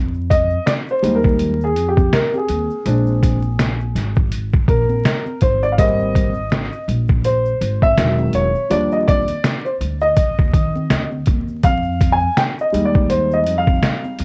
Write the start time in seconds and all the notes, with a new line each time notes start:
Already playing: F2
0.14 shaker
0.30 D#5, kick, closed hi-hat, high conga, low conga, shaker
0.50 shaker
0.66 D5, snare, closed hi-hat, high conga, shaker
0.88 C5, shaker
1.02 D#2 G3 G#3 D#4, closed hi-hat, low conga, shaker
1.15 A#4
1.23 kick, shaker
1.39 closed hi-hat, shaker
1.61 G#4, shaker
1.76 F2, closed hi-hat, shaker
1.88 G4
1.97 kick, high conga, shaker
2.13 A#4, snare, closed hi-hat, shaker
2.34 G4 G#4, high conga, shaker
2.48 D#2, closed hi-hat, low conga, shaker
2.70 shaker
2.86 A#1 G#3 C4 D4, closed hi-hat, shaker
3.07 shaker
3.23 kick, closed hi-hat, high conga, low conga, shaker
3.42 shaker
3.59 snare, closed hi-hat, high conga, shaker
3.80 shaker
3.95 G#1, snare, closed hi-hat, low conga, shaker
4.16 kick, shaker
4.31 closed hi-hat, shaker
4.53 kick, shaker
4.68 A#1 A#4, kick, closed hi-hat, shaker
4.90 high conga, shaker
5.05 snare, closed hi-hat, shaker
5.26 high conga, shaker
5.41 G#1 C5, kick, closed hi-hat, low conga, shaker
5.63 D5, shaker
5.72 F5
5.78 G3 A#3 C4 D#5, kick, closed hi-hat, shaker
5.99 shaker
6.15 kick, closed hi-hat, high conga, low conga, shaker
6.35 shaker
6.51 snare, closed hi-hat, high conga, shaker
6.73 shaker
6.88 A#1, closed hi-hat, low conga, shaker
7.08 kick, shaker
7.24 C5, closed hi-hat, shaker
7.46 shaker
7.61 G#1, closed hi-hat, shaker
7.82 E5, kick, high conga, shaker
7.97 E1 D#3 F#3 G#3, snare, closed hi-hat, shaker
8.19 high conga, shaker
8.33 E1 C#5, closed hi-hat, low conga, shaker
8.55 shaker
8.70 D#2 F3 G3 D4 D5, closed hi-hat, shaker
8.92 D#5, shaker
9.08 D5, kick, closed hi-hat, high conga, low conga, shaker
9.28 closed hi-hat, shaker
9.44 snare, closed hi-hat, high conga, shaker
9.65 C5, shaker
9.81 D2, closed hi-hat, low conga, shaker
10.01 D#5, shaker
10.17 kick, closed hi-hat, shaker
10.38 D#2, kick, shaker
10.53 D#3, kick, closed hi-hat, shaker
10.76 high conga, shaker
10.90 D2, snare, closed hi-hat, shaker
11.11 high conga, shaker
11.26 D#2, kick, closed hi-hat, low conga, shaker
11.48 shaker
11.63 F2 F5, kick, closed hi-hat, shaker
11.84 shaker
12.00 kick, closed hi-hat, high conga, low conga, shaker
12.12 G#5
12.20 shaker
12.37 G5, snare, closed hi-hat, high conga, shaker
12.58 D#5, shaker
12.72 D#2 G3 G#3 D#4, closed hi-hat, low conga, shaker
12.85 D5
12.94 kick, shaker
13.09 C5, closed hi-hat, shaker
13.31 D#5, shaker
13.46 F2, closed hi-hat, shaker
13.58 F5
13.67 kick, high conga, shaker
13.83 snare, closed hi-hat, shaker
14.04 high conga, shaker
14.19 D#2, closed hi-hat, low conga, shaker